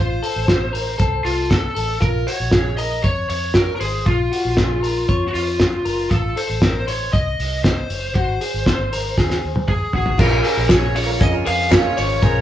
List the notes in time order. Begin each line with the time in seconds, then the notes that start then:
Already playing: F4 C5
0.00 A1
0.23 A4, open hi-hat
0.36 A1
0.48 C5, kick, snare, closed hi-hat
0.73 A#4, open hi-hat
0.98 C2 A4, kick, closed hi-hat
1.25 C2 F4, open hi-hat
1.50 A4, kick, snare, closed hi-hat
1.75 A1 A4, open hi-hat
2.00 A#1 F4 A#4, kick, closed hi-hat
2.27 F#4 C#5, open hi-hat
2.40 A#1
2.51 G#4, kick, snare, closed hi-hat
2.77 A#4 D#5, open hi-hat
3.04 F2 C#5, kick, closed hi-hat
3.29 F2 C#5, open hi-hat
3.54 A#4, kick, snare, closed hi-hat
3.76 A#4
3.80 G#1 G#4 C5, open hi-hat
4.06 A#1 F4, kick, closed hi-hat
4.32 F#4, open hi-hat
4.45 A#1
4.57 G#4, kick, snare, closed hi-hat
4.83 A#4, open hi-hat
5.09 F2 C#5, kick, closed hi-hat
5.28 F#4
5.34 F2 F4, open hi-hat
5.60 kick, snare, closed hi-hat
5.85 F#1 A#4, open hi-hat
6.10 A1 F4 A4, kick, closed hi-hat
6.36 A4 C5, open hi-hat
6.50 A1
6.62 A#4, kick, snare, closed hi-hat
6.87 C5 C#5, open hi-hat
7.13 C2 D#5, kick, closed hi-hat
7.39 C2, open hi-hat
7.64 C5, kick, snare, closed hi-hat
7.90 F#1 C#5, open hi-hat
8.15 G#1 F#4 C5, kick, closed hi-hat
8.41 G#4, open hi-hat
8.54 G#1
8.66 C5, kick, snare, closed hi-hat
8.93 A#4, open hi-hat
9.18 D#2 G#4, kick, snare
9.30 snare
9.44 D#2
9.56 high tom
9.68 G#4 G#6, kick, mid tom
9.93 G#1 F#4 G#4 G#6, floor tom
10.06 floor tom
10.18 A#1 G#3 C#4 F4 G#4 A#4 A#6, kick, crash
10.42 C#4 F4 G#4 A#4, open hi-hat
10.56 A#1 G#3 C#4 F4 A#4
10.68 C#4 F4 G#4 C5 C#5 C#7, kick, snare, clap, closed hi-hat
10.94 C#4 F4 G#4 C#5 C#7, open hi-hat
11.06 G#3 C#4 F4 A#4
11.19 F2 C#4 F4 G#4 A#4 D#5 D#7, kick, closed hi-hat
11.32 G#3 C#4 F4 A#4
11.45 F2 C#4 F4 G#4 A#4 F5 F7, clap, open hi-hat
11.69 A#2 F3 G#3 C#4 F4 G#4 A#4 C#5, kick, snare, clap, closed hi-hat
11.73 C#7
11.96 G#1 C#4 F4 G#4 C5 C#5 C#7, open hi-hat
12.21 A#1 G#3 C#4 F4 G#4 A#4 C5, kick, closed hi-hat